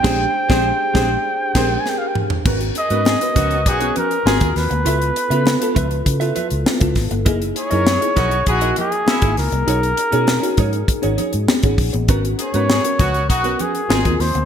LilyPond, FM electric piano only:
\new Staff \with { instrumentName = "FM electric piano" } { \time 4/4 \key gis \minor \tempo 4 = 100 <d' g' gis' bis'>8 r16 <d' g' gis' bis'>8 r16 <d' g' gis' bis'>8 r8 <d' g' gis' ais'>8 r4 | <b cis' fis' ais'>8 r16 <b cis' fis' ais'>16 r16 <b cis' fis' b'>8. r16 <b cis' fis' cis''>8. <bis eis' fis' ais'>16 <bis eis' fis' ais'>8 r16 | <b e' eis' a'>8 r16 <b e' eis' b'>16 r16 <b e' eis' a'>8. r16 <b e' eis' a'>8. r16 <b e' eis' a'>8 r16 | <ais dis' e' gis'>8 r16 <ais dis' e' gis'>16 r16 <ais dis' e' gis'>8. r16 <ais dis' e' fis'>8. r16 <ais dis' e' gis'>8 r16 |
<cis' dis' fis' gis'>8 r16 <cis' dis' fis' gis'>16 r16 <cis' dis' fis' gis'>8. r16 <cis' dis' fis' gis'>8. r16 <cis' dis' fis' gis'>8 r16 | <b cis' fis' ais'>8 r16 <b cis' fis' ais'>16 r16 <b cis' fis' ais'>8. r16 <b cis' fis' ais'>8. <bis eis' fis' ais'>16 <bis eis' fis' ais'>8 r16 | }